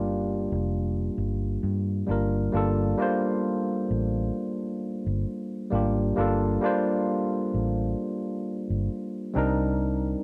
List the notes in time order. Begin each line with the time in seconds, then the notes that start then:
Already playing: G1 G3 A#3 D4 F4 G4 A#4
0.52 F1
1.18 G1
1.63 G2
2.07 G1 G3 A#3 D4 F4
2.11 A#4
2.52 G1 G3 A#3 D4 F4
2.57 A4
2.98 G3 A#3 D4 F4
3.02 C5
3.90 A1
5.06 G1
5.70 G#1 G3 A#3 D4 F4
5.75 G4
6.16 G1 G3 A#3 D4 F4
6.20 A4
6.61 G3 A#3 D4 F4
6.66 C5
7.54 A1
8.70 G1
9.34 C2 G3 C4 D4 D#4
9.38 A#4